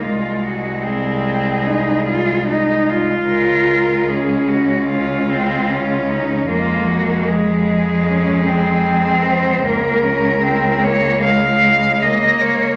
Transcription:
X:1
M:4/4
L:1/8
Q:1/4=75
K:Fphr
V:1 name="Cello"
F G A4- A z | B2 A G F3 E | F G A4- A c | [K:Bbdor] B3 d f2 e d |]
V:2 name="Cello"
A,2 C2 E F E F- | F2 D2 D C D2 | B,2 A,2 D C3 | [K:Bbdor] B, D C B, A, A, B,2 |]
V:3 name="Cello" clef=bass
A,8 | A,8 | A,8 | [K:Bbdor] A,8 |]
V:4 name="Cello" clef=bass
C,,8 | D,,8 | F,,8 | [K:Bbdor] D,,8 |]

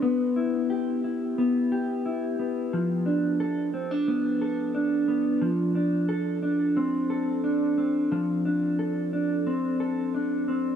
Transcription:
X:1
M:4/4
L:1/16
Q:1/4=89
K:Ddor
V:1 name="Clean electric guitar"
B,2 E2 G2 E2 B,2 G2 E2 B,2 | F,2 D2 A2 C D B,2 A2 D2 B,2 | F,2 D2 A2 D2 C2 A2 D2 C2 | F,2 D2 A2 D2 C2 A2 D2 C2 |]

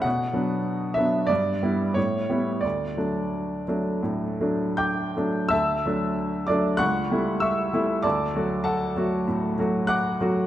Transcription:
X:1
M:4/4
L:1/8
Q:1/4=95
K:D
V:1 name="Grand piano"
f3 e d2 c2 | d6 [gd'g']2 | [eae']3 [dd'] [fc'f']2 [ec'e']2 | [dad']2 [Afa]3 z [fd'f']2 |]
V:2 name="Grand piano"
B,, [F,B,D]2 [F,B,D] G,, [G,B,E] A,, [G,B,E] | D,, [F,A,D]2 [F,A,D] A,, [F,A,D]2 [F,A,D] | D,, [F,A,D]2 [F,A,D] C,, [G,A,E]2 [G,A,E] | D,, [F,A,F]2 [F,A,F] A,, [F,A,F]2 [F,A,F] |]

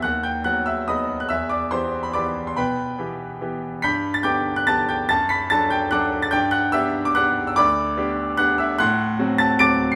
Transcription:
X:1
M:3/4
L:1/16
Q:1/4=144
K:Em
V:1 name="Grand piano"
[ff']2 [gg']2 [ff']2 [ee']2 [^db^d']3 f' | [ee']2 [dd']2 [cc']3 b [dbd']3 c' | [Bgb]8- [Bgb]2 z2 | [bg'b']3 a' [gd'g']3 f' [aa']2 [gg']2 |
[aa']2 [bb']2 [aa']2 [gg']2 [fd'f']3 a' | [gg']2 [ff']2 [ee']3 d' [fd'f']3 e' | [dbd']8 [ff']2 [ee']2 | [fc'f']6 [aa']2 [d'a'd'']3 c'' |]
V:2 name="Grand piano"
^D,,4 [F,B,F]4 [F,B,F]4 | E,,4 [E,B,G]4 [E,B,G]4 | B,,4 [E,B,G]4 [E,B,G]4 | G,,4 [D,B,G]4 [D,B,G]4 |
F,,4 [F,DA]4 [F,DA]4 | G,,4 [B,DG]4 [B,DG]4 | D,,4 [B,DG]4 [B,DG]4 | A,,4 [F,CF]4 [F,CF]4 |]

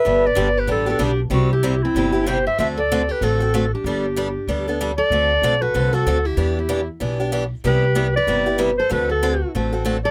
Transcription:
X:1
M:4/4
L:1/8
Q:"Swing" 1/4=190
K:Dmix
V:1 name="Clarinet"
e d2 B A A G z | F G2 E3 c e | e d2 B A3 G- | G6 z d- |
d3 B2 A2 G- | G G2 z4 z | B3 d3 z c | B A3 z3 d |]
V:2 name="Steel-string acoustic guitar"
B B2 G D F D z | C E2 C3 G c | c A2 G F3 D- | D6 z A- |
A3 F2 F2 E- | E E2 z4 z | G3 B3 z A | F F3 z3 A |]
V:3 name="Steel-string acoustic guitar"
[D,G,B,DG] z [D,G,B,DG] z [D,G,B,DG] [B,DG] [D,G,B,DG] z | [C,G,CEG] z [C,G,CEG] z [C,G,CEG] [CEG] [C,G,CEG] z | [D,A,CFA] z [D,A,CFA] z [D,A,CFA] [CFA] [D,A,CFA] z | [G,B,DA] z [G,B,DA] z [G,B,DA] [B,DA] [G,B,DA] z |
[D,A,CFA] z [D,A,CFA] z [D,A,CFA] [CFA] [D,A,CFA] z | [E,B,DG] z [E,B,DG] z [E,B,DG] [B,DG] [E,B,DG] z | [C,G,B,EG] z [C,G,B,EG] z [C,G,B,EG] [B,EG] [C,G,B,EG] z | [D,A,CFA] z [D,A,CFA] z [D,A,CFA] [CFA] [D,A,CFA] z |]
V:4 name="Upright bass" clef=bass
G,,,2 G,,,2 A,,,2 B,,,2 | C,,4 G,,,4 | D,,4 A,,,4 | G,,,4 D,,4 |
D,,2 B,,,2 C,,2 D,,2 | E,,4 B,,,4 | C,,4 G,,,4 | D,,4 A,,,4 |]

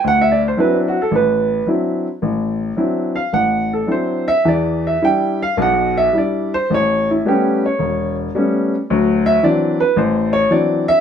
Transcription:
X:1
M:4/4
L:1/16
Q:"Swing" 1/4=109
K:Dmix
V:1 name="Upright piano"
f e d c B D F A B4 z4 | z6 =f2 ^f2 A2 c2 e2 | d2 e2 g2 =f2 ^f2 e2 d2 c2 | ^c2 E2 G2 c4 z6 |
z2 e2 d2 B2 c2 ^c2 d2 e2 |]
V:2 name="Upright piano"
D,,4 [F,CDE]2 z2 A,,,4 [F,CDE]2 z2 | A,,,4 [F,CDE]2 z2 A,,,4 [F,CDE]2 z2 | [E,,E,]4 [G,DE]2 z2 [B,,,B,,]4 [G,DE]2 z2 | A,,,4 [G,A,B,^C]2 z2 E,,,4 [G,A,B,C]2 z2 |
[D,,F,]4 [E,F,CD]2 z2 A,,,4 [E,F,CD]2 z2 |]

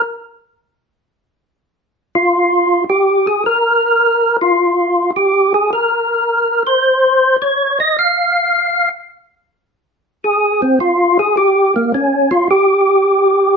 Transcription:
X:1
M:4/4
L:1/8
Q:"Swing" 1/4=106
K:Fm
V:1 name="Tonewheel organ"
z6 z F- | F2 G A B3 F- | F2 G A B3 c- | c2 d e f3 z |
z4 A C F A | G B, D F G4 |]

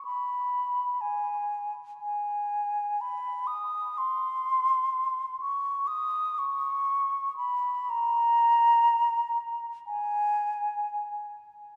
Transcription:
X:1
M:4/4
L:1/16
Q:1/4=61
K:G#m
V:1 name="Flute"
b4 g3 z g4 b2 d'2 | ^b6 c'2 d'2 c'4 =b2 | a6- a z g6 z2 |]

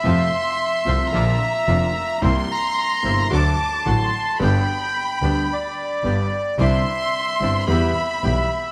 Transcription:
X:1
M:4/4
L:1/8
Q:1/4=110
K:C
V:1 name="Violin section"
c'4 _b4 | c'4 d'2 c'2 | b6- b z | c'4 b4 |]
V:2 name="Bandoneon"
e8 | c' _b3 a4 | g4 d4 | e4 e4 |]
V:3 name="Bandoneon"
[A,CF] z2 [A,CF] [_B,DF] z [B,DF] z | [_B,CE] z2 [B,CE] [A,D^F] z [A,DF] z | [B,DG] z2 [B,DG] z2 [B,DG] z | [CDE] z2 [CDE] [B,EG] z [B,EG] z |]
V:4 name="Grand piano" clef=bass
[F,,C,F,A,F] z2 [C,,C,F,A,F] [_B,,,_B,,D,F,_B,F] z [F,,,F,,D,F,B,F] z | [C,,C,G,_B,E] z2 [G,,,G,,C,G,B,E] [D,,D,^F,A,^F] z [A,,,A,,D,F,A,F] z | [G,,,G,,D,G,B,G] z2 [D,,D,G,B,G] z2 [G,,,G,,D,G,B,G] z | [C,,C,D,G,CE] z2 [G,,,G,,D,G,CE] [E,,E,G,B,G] z [B,,,B,,E,G,B,G] z |]
V:5 name="Double bass" clef=bass
F,, z2 C,, _B,,, z F,,, z | C,, z2 G,,, D,, z A,,, z | G,,, z2 D,, z2 G,,, z | C,, z2 G,,, E,, z B,,, z |]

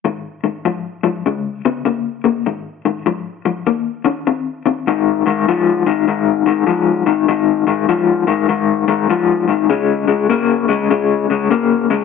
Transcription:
X:1
M:4/4
L:1/8
Q:"Swing" 1/4=100
K:Ab
V:1 name="Clean electric guitar" clef=bass
[A,,E,] [A,,E,] [A,,F,] [A,,F,] [D,A,] [D,_C] [D,B,] [D,B,] | [A,,E,] [A,,E,] [A,,F,] [A,,F,] [E,B,] [E,D] [E,C] [E,C] | [A,,E,] [A,,E,] [A,,F,] [A,,E,] [A,,E,] [A,,E,] [A,,F,] [A,,E,] | [A,,E,] [A,,E,] [A,,F,] [A,,E,] [A,,E,] [A,,E,] [A,,F,] [A,,E,] |
[D,A,] [D,A,] [D,B,] [D,A,] [D,A,] [D,A,] [D,B,] [D,A,] |]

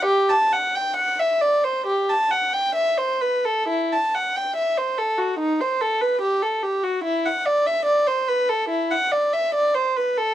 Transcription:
X:1
M:4/4
L:1/16
Q:1/4=71
K:G
V:1 name="Violin"
G a f g f e d c G a f g e c B A | [K:Em] E a f g e c A F ^D c A B G A G F | E f d e d c B A E f d e d c B A |]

